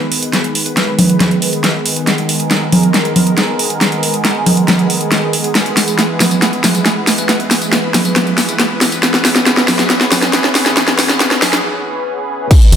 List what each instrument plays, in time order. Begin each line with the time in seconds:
Already playing: analog synth pad D#3 G#3 B3 G#4 B4
0.12 open hi-hat
0.23 closed hi-hat
0.33 snare, closed hi-hat
0.44 closed hi-hat
0.55 open hi-hat
0.66 closed hi-hat
0.77 snare, closed hi-hat
0.99 open hi-hat, high conga
1.10 closed hi-hat
1.20 snare, closed hi-hat, high conga
1.31 closed hi-hat
1.42 open hi-hat
1.53 closed hi-hat
1.64 snare, closed hi-hat
1.86 open hi-hat
1.96 closed hi-hat
2.07 analog synth pad A#4, snare, closed hi-hat
2.18 closed hi-hat
2.29 open hi-hat
2.40 closed hi-hat
2.51 snare, closed hi-hat
2.72 open hi-hat, high conga
2.83 closed hi-hat
2.94 snare, closed hi-hat
3.05 closed hi-hat
3.16 open hi-hat, high conga
3.27 closed hi-hat
3.38 snare, closed hi-hat
3.59 open hi-hat
3.70 closed hi-hat
3.81 snare, closed hi-hat
3.92 closed hi-hat
4.03 open hi-hat
4.14 closed hi-hat
4.25 snare, closed hi-hat
4.46 open hi-hat, high conga
4.57 closed hi-hat
4.68 snare, closed hi-hat, high conga
4.79 closed hi-hat
4.90 open hi-hat
5.01 closed hi-hat
5.12 snare, closed hi-hat
5.33 open hi-hat
5.44 closed hi-hat
5.55 analog synth pad E3 B4, snare, closed hi-hat, tambourine
5.66 closed hi-hat
5.77 snare, open hi-hat, tambourine
5.88 closed hi-hat, tambourine
5.99 snare, closed hi-hat, tambourine
6.20 snare, open hi-hat, tambourine, high conga
6.31 closed hi-hat, tambourine
6.42 snare, closed hi-hat, tambourine
6.53 closed hi-hat
6.64 snare, open hi-hat, tambourine, high conga
6.75 closed hi-hat, tambourine
6.86 snare, closed hi-hat, tambourine
7.07 snare, open hi-hat, tambourine
7.18 closed hi-hat, tambourine
7.29 snare, closed hi-hat, tambourine
7.40 closed hi-hat
7.51 snare, open hi-hat, tambourine
7.62 closed hi-hat, tambourine
7.73 snare, closed hi-hat, tambourine
7.94 snare, open hi-hat, tambourine, high conga
8.05 closed hi-hat, tambourine
8.16 snare, closed hi-hat, tambourine, high conga
8.27 closed hi-hat
8.38 snare, open hi-hat, tambourine
8.49 closed hi-hat, tambourine
8.59 snare, closed hi-hat, tambourine
8.81 snare, open hi-hat, tambourine
8.92 closed hi-hat, tambourine
9.03 analog synth pad B3 C#4 G#4, snare, closed hi-hat, tambourine
9.14 snare, closed hi-hat
9.25 snare, open hi-hat, tambourine
9.36 snare, closed hi-hat, tambourine
9.46 snare, closed hi-hat, tambourine
9.57 snare
9.68 snare, open hi-hat, tambourine, high conga
9.79 snare, closed hi-hat, tambourine
9.90 snare, closed hi-hat, tambourine
10.01 snare, closed hi-hat
10.12 snare, open hi-hat, tambourine, high conga
10.22 snare, closed hi-hat, tambourine
10.33 snare, closed hi-hat, tambourine
10.44 snare
10.55 snare, open hi-hat, tambourine
10.66 snare, closed hi-hat, tambourine
10.77 snare, closed hi-hat, tambourine
10.88 snare, closed hi-hat
10.99 snare, open hi-hat, tambourine
11.09 snare, closed hi-hat, tambourine
11.20 snare, closed hi-hat, tambourine
11.31 snare, closed hi-hat
11.42 snare, open hi-hat, tambourine, high conga
11.53 snare, closed hi-hat, tambourine
12.51 analog synth pad G#3 B3 D#4 B4 D#5, kick, closed hi-hat, crash, tambourine
12.62 closed hi-hat, tambourine
12.72 analog synth bass G#1, open hi-hat, tambourine